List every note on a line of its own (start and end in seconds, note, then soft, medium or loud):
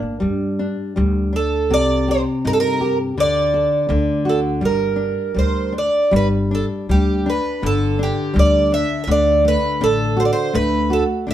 0.00 0.23 G1 medium
0.00 0.20 A#3 soft
0.20 0.71 G2 medium
0.20 0.95 G3 medium
0.59 0.96 D4 soft
0.96 1.72 D2 loud
0.96 1.33 G3 soft
1.33 1.70 D4 soft
1.33 1.74 A4 medium
1.70 2.20 C2 medium
1.70 3.13 C3 medium
1.70 2.07 D5 loud
2.08 2.44 G4 soft
2.08 2.20 C5 medium
2.45 3.18 G2 loud
2.45 2.80 D#4 medium
2.45 2.53 A#4 loud
2.53 2.59 A4 medium
2.60 2.97 A#4 loud
2.81 3.16 G4 medium
3.18 3.65 D2 medium
3.18 3.88 D3 medium
3.18 4.23 D5 loud
3.54 3.89 A4 soft
3.89 4.64 D2 loud
3.89 4.60 D3 medium
4.25 4.61 F#4 soft
4.29 4.39 A4 medium
4.61 5.10 G1 medium
4.61 5.33 G3 medium
4.65 5.72 A#4 medium
4.96 5.34 D4 soft
5.34 5.86 D2 medium
5.34 5.72 G3 soft
5.39 5.73 C5 medium
5.72 6.11 D4 soft
5.78 6.16 D5 medium
6.11 6.62 G1 loud
6.11 6.88 G3 medium
6.16 6.26 B4 medium
6.51 6.88 D4 soft
6.51 6.65 A4 medium
6.89 7.37 D2 medium
6.89 7.26 G3 medium
6.89 7.29 G4 medium
7.26 7.62 D4 medium
7.26 7.66 B4 medium
7.62 8.10 G1 loud
7.62 9.03 D3 medium
7.62 7.99 A4 medium
7.99 8.34 D4 medium
7.99 8.38 G4 medium
8.34 8.83 D2 loud
8.34 8.70 G3 medium
8.39 8.73 D5 medium
8.72 9.07 D4 medium
8.72 9.02 E5 medium
9.04 9.55 D2 loud
9.04 9.09 E5 medium
9.08 10.50 D3 medium
9.08 9.43 D5 medium
9.45 9.80 A3 medium
9.45 9.84 B4 medium
9.81 10.28 A1 loud
9.81 10.16 D4 medium
9.81 10.20 A4 medium
10.17 10.52 F#4 medium
10.17 10.25 C5 medium
10.25 10.31 D5 medium
10.33 10.55 C5 medium
10.53 11.02 D2 loud
10.53 11.34 A3 medium
10.53 10.92 B4 medium
10.90 11.26 F#4 soft
10.90 11.03 A4 medium
11.27 11.34 D2 medium
11.27 11.34 D4 soft
11.27 11.34 E5 medium